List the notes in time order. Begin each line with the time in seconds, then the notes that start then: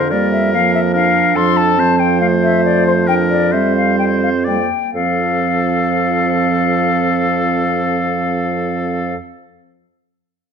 Already playing: F2 D3 D4 C5
0.10 G3 A#3 A#4 D5
0.32 E5
0.53 F3 A#3 F5
0.74 E5
0.94 D4 A#4 F5
1.35 F2 F3 A4 C6
1.57 A5
1.79 F3 C4 C5
1.98 C5 G5
2.21 A3 F5
2.43 E5
2.65 D5
2.87 C5
3.07 D4 A#4 G5
3.30 D5
3.51 G3 C4 C5 E5
3.76 F5
3.99 G5
4.23 F5
4.44 G3 A#3 D5 G5
4.94 F2 F3 C4 A4 F5